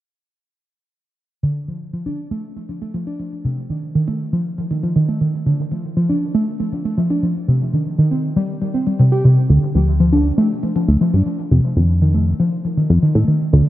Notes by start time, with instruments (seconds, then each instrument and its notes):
1.43 synth pluck D3
1.68 synth pluck F3
1.93 synth pluck F3
2.06 synth pluck D4
2.31 synth pluck A3
2.56 synth pluck A3
2.69 synth pluck F3
2.82 synth pluck A3
2.94 synth pluck F3
3.07 synth pluck D4
3.20 synth pluck F3
3.45 synth pluck C3
3.70 synth pluck D#3
3.95 synth pluck D#3
4.08 synth pluck A3
4.33 synth pluck F3
4.58 synth pluck F3
4.71 synth pluck D#3
4.83 synth pluck F3
4.96 synth pluck D#3
5.09 synth pluck A3
5.21 synth pluck D#3
5.46 synth pluck D3
5.72 synth pluck F3
5.97 synth pluck F3
6.09 synth pluck D4
6.35 synth pluck A3
6.60 synth pluck A3
6.73 synth pluck F3
6.85 synth pluck A3
6.98 synth pluck F3
7.10 synth pluck D4
7.23 synth pluck F3
7.48 synth pluck C3
7.73 synth pluck D#3
7.99 synth pluck D#3
8.11 synth pluck C4
8.36 synth pluck G3
8.62 synth pluck G3
8.74 synth pluck C4
8.87 synth pluck G3
8.99 synth pluck C3
9.12 synth pluck G4
9.25 synth pluck C3
9.50 acid bass D2, synth pluck D3
9.75 acid bass D2, synth pluck F3
10.00 synth pluck F3
10.13 synth pluck D4
10.38 synth pluck A3
10.63 synth pluck A3
10.76 synth pluck F3
10.88 acid bass D2, synth pluck A3
11.01 synth pluck F3
11.14 acid bass G2, synth pluck D4
11.26 synth pluck F3
11.51 acid bass F2, synth pluck C3
11.77 acid bass F2, synth pluck D#3
12.02 synth pluck D#3
12.14 synth pluck A3
12.40 synth pluck F3
12.65 synth pluck F3
12.77 synth pluck D#3
12.90 acid bass F2, synth pluck F3
13.03 synth pluck D#3
13.15 acid bass A2, synth pluck A3
13.28 synth pluck D#3
13.53 acid bass D2, synth pluck D3